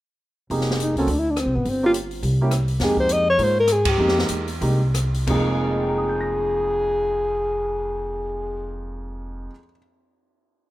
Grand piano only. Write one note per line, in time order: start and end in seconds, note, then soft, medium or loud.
0.51 0.93 A#3 soft
0.51 0.93 D#4 soft
0.51 0.93 G4 soft
0.51 0.93 G#4 medium
0.98 1.08 A#3 medium
0.98 1.08 C4 medium
0.98 1.08 F#4 medium
0.98 1.08 A4 medium
1.83 1.93 A#3 medium
1.83 1.94 C#4 soft
1.83 1.94 F4 medium
1.83 1.94 G4 medium
2.41 2.51 A#3 medium
2.41 2.52 C#4 medium
2.41 2.51 E4 medium
2.41 2.52 G4 medium
2.81 3.24 G#3 soft
2.81 3.24 A#3 soft
2.81 3.24 D#4 soft
2.81 3.24 G4 medium
3.38 3.54 G#3 soft
3.38 3.55 A#3 soft
3.38 3.55 D#4 soft
3.38 3.54 F4 medium
3.99 4.45 G#3 soft
3.99 4.45 A#3 soft
3.99 4.45 D#4 soft
3.99 4.45 G4 medium
4.61 4.79 G#3 soft
4.61 4.79 A#3 soft
4.61 4.79 D#4 soft
4.61 4.79 G4 medium
5.27 9.50 F2 medium
5.27 9.50 F3 medium
5.27 9.51 G#3 medium
5.27 9.51 A#3 medium
5.27 9.51 D#4 soft
5.27 9.52 G#4 medium
5.64 9.47 A#4 soft
5.71 9.51 D#5 soft
5.79 9.55 G5 soft
5.88 9.60 A#5 soft
5.98 9.65 D#6 soft
6.09 9.70 G6 soft
6.21 9.76 A#6 soft